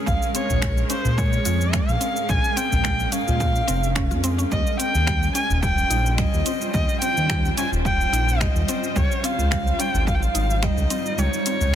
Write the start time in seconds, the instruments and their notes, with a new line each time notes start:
Already playing: ambient pad G#3 C#4 G#4 A#4
0.06 analog synth bass A#1, synth pluck G#3, kamancheh F5, kick, shaker
0.22 shaker
0.35 synth pluck C4, kamancheh C#5, closed hi-hat, shaker
0.50 analog synth bass A#1, udu, shaker
0.62 synth pluck G#3, finger snap, kick, shaker
0.77 shaker
0.90 synth pluck C#4, kamancheh C5, closed hi-hat, shaker
1.05 analog synth bass A#2, udu, shaker
1.17 synth pluck G#3, kamancheh C#5, kick, shaker
1.33 shaker
1.45 analog synth bass F2, synth pluck F4, closed hi-hat, shaker
1.61 shaker
1.73 synth pluck G#3, kamancheh F5, finger snap, kick, shaker
1.89 analog synth bass A#1, shaker
2.01 synth pluck C4, closed hi-hat, shaker
2.16 shaker
2.29 analog synth bass A#1, synth pluck G#3, kamancheh G#5, kick, shaker
2.44 shaker
2.56 synth pluck C4, kamancheh G5, closed hi-hat, shaker
2.72 analog synth bass A#1, udu, shaker
2.84 synth pluck G#3, finger snap, kick, shaker
3.00 shaker
3.12 synth pluck C#4, kamancheh F5, closed hi-hat, shaker
3.28 analog synth bass A#2, udu, shaker
3.40 synth pluck G#3, kick, shaker
3.56 shaker
3.68 analog synth bass F1, synth pluck C4, closed hi-hat, shaker
3.83 shaker
3.95 synth pluck C#4, finger snap, kick, shaker
4.11 analog synth bass F2, synth pluck F4, shaker
4.24 synth pluck C4, closed hi-hat, shaker
4.38 synth pluck C#4, shaker
4.51 analog synth bass D#2, ambient pad G3 C#4 F4 C5, synth pluck G3, kamancheh D#5, kick, shaker
4.67 shaker
4.79 synth pluck C4, kamancheh G5, closed hi-hat, shaker
4.94 analog synth bass D#2, udu, shaker
5.07 synth pluck G3, finger snap, kick, shaker
5.23 shaker
5.35 synth pluck C#4, kamancheh G#5, closed hi-hat, shaker
5.50 analog synth bass D#1, udu, shaker
5.62 synth pluck G3, kamancheh G5, kick, shaker
5.78 shaker
5.90 analog synth bass A#1, synth pluck D#4, closed hi-hat, shaker
6.06 shaker
6.18 synth pluck G3, kamancheh D#5, finger snap, kick, shaker
6.33 analog synth bass D#2, shaker
6.46 synth pluck C4, closed hi-hat, shaker
6.61 shaker
6.74 analog synth bass D#2, synth pluck G3, kamancheh D#5, kick, shaker
6.89 shaker
7.01 synth pluck C4, kamancheh G5, closed hi-hat, shaker
7.17 analog synth bass D#2, shaker
7.30 synth pluck G3, finger snap, kick, shaker
7.45 shaker
7.57 synth pluck C#4, kamancheh G#5, closed hi-hat, shaker
7.72 analog synth bass D#1, udu, shaker
7.85 synth pluck G3, kamancheh G5, kick, shaker
8.01 shaker
8.12 analog synth bass A#1, synth pluck D#4, closed hi-hat, shaker
8.29 shaker
8.40 synth pluck G3, kamancheh D#5, finger snap, kick, shaker
8.55 analog synth bass D#2, shaker
8.69 synth pluck C4, closed hi-hat, shaker
8.84 shaker
8.96 analog synth bass C#2, synth pluck G3, ambient pad D#4, kamancheh C#5, kick, shaker
9.12 shaker
9.24 synth pluck C4, kamancheh F5, closed hi-hat, shaker
9.38 analog synth bass C#2, udu, shaker
9.51 synth pluck G3, finger snap, kick, shaker
9.67 shaker
9.79 synth pluck C#4, kamancheh G5, closed hi-hat, shaker
9.94 analog synth bass G#1, udu, shaker
10.07 synth pluck G3, kamancheh F5, kick, shaker
10.15 kamancheh G5
10.23 kamancheh F5, shaker
10.34 analog synth bass G#1, synth pluck D#4, closed hi-hat, shaker
10.50 shaker
10.63 synth pluck G3, kamancheh D#5, finger snap, kick, shaker
10.77 analog synth bass C#2, shaker
10.90 synth pluck C4, closed hi-hat, shaker
11.06 shaker
11.18 analog synth bass C#2, synth pluck G3, ambient pad A#4, kamancheh C#5, shaker
11.33 shaker
11.46 synth pluck C4, closed hi-hat, shaker
11.61 analog synth bass C#2, udu, shaker